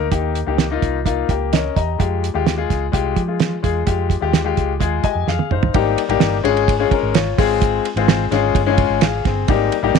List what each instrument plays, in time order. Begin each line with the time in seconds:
0.10 fingered electric bass D#2, grand piano A#3 D#4 G4, kick, closed hi-hat
0.35 closed hi-hat
0.46 fingered electric bass C#2, grand piano A#3 D#4 G4
0.58 snare, closed hi-hat
0.71 grand piano A#3 D#4 F4
0.82 fingered electric bass C2, kick, closed hi-hat
1.05 grand piano A#3 D#4 F4, kick, closed hi-hat
1.29 fingered electric bass C#2, grand piano A#3 G4, kick, closed hi-hat
1.53 grand piano C#4 A#4 D#5, snare, closed hi-hat
1.76 fingered electric bass E2, grand piano G4 D#5 A#5, kick, closed hi-hat
1.98 fingered electric bass F2, grand piano G#3 F4 G4, kick, closed hi-hat
2.24 closed hi-hat
2.34 fingered electric bass D#2, grand piano G#3 F4 G4
2.47 snare, closed hi-hat
2.57 grand piano G#3 F4 G#4
2.70 fingered electric bass C#2, kick, snare, closed hi-hat
2.92 fingered electric bass C2, grand piano G#3 F4 G4, kick, closed hi-hat
3.16 fingered electric bass F3, kick, closed hi-hat
3.27 grand piano G#3 F4 G#4
3.40 snare, closed hi-hat
3.63 fingered electric bass E2, grand piano G#3 F4 G#4, kick, closed hi-hat
3.86 fingered electric bass F2, grand piano G#3 F4 G4, kick, closed hi-hat
4.10 kick, closed hi-hat
4.21 fingered electric bass D#2, grand piano G#3 F4 G4
4.33 snare, closed hi-hat
4.44 grand piano G#3 F4 G4
4.57 fingered electric bass C#2, kick, closed hi-hat
4.80 fingered electric bass D#2, grand piano G#3 F4 G#4, kick, closed hi-hat
5.04 grand piano G4 D#5 G#5, kick, closed hi-hat
5.15 fingered electric bass F2
5.27 fingered electric bass F2, grand piano G#4 F5, snare
5.39 high tom
5.51 fingered electric bass G1, grand piano D#4 C5, mid tom
5.63 floor tom
5.74 fingered electric bass G#1, grand piano G3 A#3 D#4 G4, kick, ride
5.98 ride
6.08 fingered electric bass G#1, grand piano G3 A#3 D#4 G4, ride
6.20 fingered electric bass G1, snare, ride
6.44 fingered electric bass G#1, grand piano G#3 C#4 F4 G#4, ride
6.57 ride
6.68 kick, ride
6.79 grand piano G#3 C#4 F4 G#4
6.91 grand piano C#4 A#4, kick, ride
7.03 fingered electric bass G#1
7.15 grand piano F4 C#5, snare, ride
7.38 fingered electric bass G#1, grand piano G#3 C4 F4 G#4, kick, snare, open hi-hat, ride
7.61 kick, hi-hat pedal, ride
7.85 ride
7.96 fingered electric bass G#1, grand piano G#3 C4 F4 G#4, ride
8.08 snare, ride
8.31 fingered electric bass G#1, grand piano G#3 C#4 F4 G#4, snare, ride
8.55 fingered electric bass G1, kick, ride
8.66 grand piano G#3 C#4 E4 G#4
8.73 grand piano F4
8.78 kick, ride
8.90 fingered electric bass G#1
9.01 grand piano G#4 F5, snare, ride
9.25 fingered electric bass G1, grand piano C4 G#4, kick, snare, ride
9.48 fingered electric bass G#1, grand piano G3 A#3 D#4 G4, kick, ride
9.72 ride
9.83 fingered electric bass G#1, grand piano G3 A#3 D#4 G4
9.95 fingered electric bass G1, snare, ride